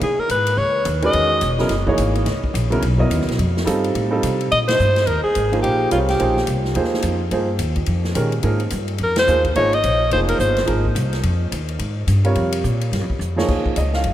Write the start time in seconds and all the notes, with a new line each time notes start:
0.01 C#3 G#4, ride
0.18 A#4, muted upright bass stroke
0.29 G#2 B4, hi-hat pedal, ride
0.47 ride
0.57 C#2 C#5
0.85 D#2, hi-hat pedal, ride
1.02 D#3 G#3 C#4 F#4 B4 D#5, ride
1.13 E2, ride
1.41 E1, hi-hat pedal, ride
1.58 C#3 F#3 B3 E4 A#4, snare
1.69 F#1, snare, ride
1.86 E3 A#3 D#4 G#4 C#5, kick
1.98 G#1, hi-hat pedal, ride
2.15 ride
2.26 C#2, snare, ride
2.43 muted upright bass stroke, kick
2.54 A#1, hi-hat pedal, ride
2.70 C#3 F#3 B3 E4 A#4, ride
2.82 B1, ride
2.98 F#3 B3 E4 A#4 D#5, kick
3.10 D#2, hi-hat pedal, ride
3.20 C#2, snare
3.28 B1, snare, ride
3.39 F2, ride
3.57 snare
3.65 G2 G3 C4 D#4 F4 A4, hi-hat pedal, ride
3.84 ride
3.95 A2, ride
4.11 G3 C4 D#4 F4 A4
4.23 C3, hi-hat pedal, ride
4.41 ride
4.52 A#2 D#5, ride
4.68 C5, snare, ride
4.79 G2, hi-hat pedal
4.96 snare, ride
5.07 D#2 A#4, ride
5.23 G#4, muted upright bass stroke
5.35 G#1, hi-hat pedal, ride
5.52 F3 A#3 D#4 G#4 C5, ride
5.62 A#1 G4, ride
5.90 C2 G3 C4 F4 A#4 C#5, hi-hat pedal, ride
6.09 G4, snare, ride
6.18 A#1 F3 A#3 D#4 G#4 C5, ride
6.37 snare
6.47 C2, hi-hat pedal, ride
6.65 snare
6.75 D#2 F3 A#3 D#4 G#4 C5, ride
6.84 snare
6.94 snare
7.02 F2, hi-hat pedal, ride
7.31 G2 F3 A#3 D#4 G#4 C5, ride
7.59 D#2, hi-hat pedal, ride
7.76 kick, ride
7.86 F2, ride
8.04 snare
8.15 A#2 D#3 G#3 C#4 G4 A#4, hi-hat pedal, ride
8.32 ride
8.42 G#2 F3 A#3 D#4 G#4 A#4, ride
8.60 ride
8.70 G2, hi-hat pedal, ride
8.88 ride
8.98 F2, ride
9.04 A#4
9.16 C5, snare, ride
9.27 D#2 F3 A#3 D#4 G#4 C5, hi-hat pedal
9.45 kick, ride
9.55 G#1 F3 A#3 D#4 G#4 C#5 D#5, ride
9.73 D#5, ride
9.84 A#1, hi-hat pedal, ride
10.11 F1 F3 A#3 D#4 G#4 C5, ride
10.29 A#4, ride
10.39 G1 C5, hi-hat pedal
10.57 snare, ride
10.66 G#1 F3 A#3 D#4 G#4 A#4, ride
10.85 kick
10.95 C2, hi-hat pedal, ride
11.13 snare, ride
11.23 F2, ride
11.52 D#2, hi-hat pedal, ride
11.69 ride
11.79 G#2, ride
12.07 G2, hi-hat pedal, ride
12.24 C3 G3 F4 A#4 C#5, ride
12.35 F2, ride
12.52 ride
12.64 A#2, hi-hat pedal
12.81 ride
12.92 G2, snare, ride
13.01 F2
13.10 D#2, kick
13.19 F2, hi-hat pedal
13.36 F3 A#3 D#4 G#4 C#5, snare
13.48 D#2, kick, crash
13.65 muted upright bass stroke, kick
13.76 C#2 D#5, hi-hat pedal, ride
13.94 F5, snare
14.04 F#1, ride